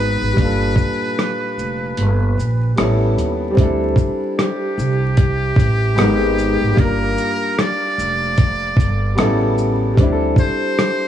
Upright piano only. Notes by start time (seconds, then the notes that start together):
Already playing: G#3 B3 D#4 F#4 B4
0.32 A#2 G3
0.39 D4 F4
0.45 A4
2.76 G3 B3 C#4
2.81 E4 A4
3.51 G3 C4
3.57 D4 E4
3.63 A4
5.95 G#3 B3 D#4
6.00 A#4 F#5
6.71 G3 A#3
6.77 D4 F4
6.84 A#4
9.15 C#3 G3 B3
9.19 E4 A4
9.94 G3 C4
10.00 D4 E4
10.06 G4
10.12 A4